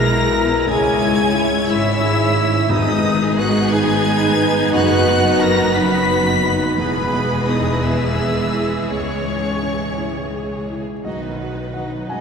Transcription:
Already playing: B1 E2 B2 G#3 B3 E4 A#4 B4 A#5 A#6
0.00 E4 G#4
0.17 G#4
0.34 E4
0.51 B3
0.67 C#2 G#3 G#4 C#5 G#5 G#6
0.85 C#4
1.01 G#2 E4
1.19 G#4
1.35 C#4 E4
1.52 C#4
1.67 G#1 G#2 G#3 E4 E5 E6
1.86 C#4
2.02 E4 G#4
2.18 G#4
2.36 E4
2.54 C#4
2.69 G#1 G#2 B3 D#4 G#4 B4 D#5 D#6
3.04 D#3
3.38 B3 F#4 F#5 F#6
3.70 D#4 G#4 G#5 G#6
4.06 B4
4.40 D#4
4.73 F#1 F#2 F#4 F#5 F#6
5.09 F#3
5.39 B3 A#4 A#5 A#6
5.73 D#4 B4 B5 B6
6.10 B4
6.43 D#4
6.76 E1 E2 E3 G#3 B3 G#4 B4 B5
7.14 B2
7.47 B3 D#4 D#5 D#6
7.83 E4 E5 E6
8.18 G#4
8.54 E4
8.89 C#2 C#4 C#5 C#6
9.27 G#2
9.62 C#4
9.97 E4
10.34 G#4
10.70 E4
11.05 B1 D#3 D#4 F#4 B4 D#5
11.24 B3 D#4 B4
11.39 D#4 F#4 D#5
11.56 B3 D#4 B4
11.72 F#3 D#4 F#4 D#5 F#5
11.76 D#4
11.91 B3 D#4 B4
12.09 B1 G#3 C#4 D#4 F#4 D#5 G#5

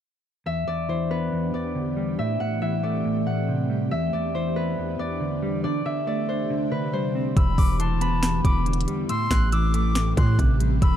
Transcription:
0.46 E2 E3 B3 D4 G4 E5
0.67 E2 D5
0.89 E3 C5
1.11 B3 B4
1.32 E2
1.54 E2 D5
1.75 D3
1.97 G3
2.18 A2 A3 C4 E5
2.40 A2 F#5
2.62 E3 E5
2.83 A3 D5
3.05 A2
3.27 A2 F#5
3.49 C3
3.70 G3
3.91 E2 E3 B3 D4 E5
4.13 E2 D5
4.34 E3 C5
4.56 B3 B4
4.78 E2
4.99 E2 D5
5.20 D3
5.43 G3
5.64 C3 D3 A3 G4 D5
5.85 D3 E5
6.07 A3 D5
6.29 D4 C5
6.50 D3
6.71 D3 B4
6.93 G3 C5
7.15 C4
7.36 E1 E2 D3 B3 E4 G4 B5 E6, kick, closed hi-hat
7.58 E1 E2 D6, kick, open hi-hat
7.79 E3 A5 C6, closed hi-hat
8.01 B3 B5, closed hi-hat
8.23 E2, finger snap, snare, closed hi-hat
8.44 E1 E2 B5 D6, kick, closed hi-hat
8.66 D3, closed hi-hat
8.73 closed hi-hat
8.81 closed hi-hat
8.87 G3, closed hi-hat
9.09 A2 E3 C4 G4 A4 C6 E6, closed hi-hat
9.31 A1 A2 F#6, finger snap, kick, snare, closed hi-hat
9.52 E3 D6 E6, closed hi-hat
9.74 A3 D6, closed hi-hat
9.95 A2, finger snap, snare, closed hi-hat
10.17 A2 C6 F#6, kick, closed hi-hat
10.39 A1 C3, kick, closed hi-hat
10.60 G3, closed hi-hat
10.82 E1 E2 D4 B4 B5 E6, kick, closed hi-hat

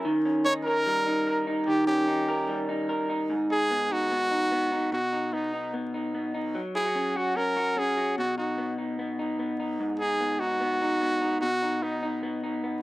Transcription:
Already playing: C#4 A#4
0.05 D#3
0.25 C#4
0.44 D#4 C#5
0.64 A#4
0.86 G3
1.07 D#4
1.27 A#4
1.47 D#4
1.66 D#3 G4
1.87 C#4 G4
2.08 D#4
2.28 A#4
2.49 G3
2.69 D#4
2.89 A#4
3.09 D#4
3.30 G#2
3.50 D#4 G#4
3.71 B3
3.91 D#4 F#4
4.11 B3
4.31 D#4
4.52 B3
4.72 D#4
4.92 B2 F#4
5.13 D#4
5.33 B3 D#4
5.53 D#4
5.74 B3
5.94 D#4
6.14 B3
6.34 D#4
6.55 F#3
6.75 E4 G#4
6.85 F#4
6.95 C#4
7.16 F#4
7.36 C#4 A#4
7.56 F#4
7.77 C#4 G#4
7.97 F#4
8.18 B2 F#4
8.38 D#4 F#4
8.58 B3
8.78 D#4
8.99 B3
9.19 D#4
9.39 B3
9.60 D#4
9.80 G#2
9.99 D#4 G#4
10.20 B3
10.40 D#4 F#4
10.61 B3
10.81 D#4
11.01 B3
11.22 D#4
11.41 B2 F#4
11.62 D#4
11.82 B3 D#4
12.03 D#4
12.23 B3
12.43 D#4
12.64 B3

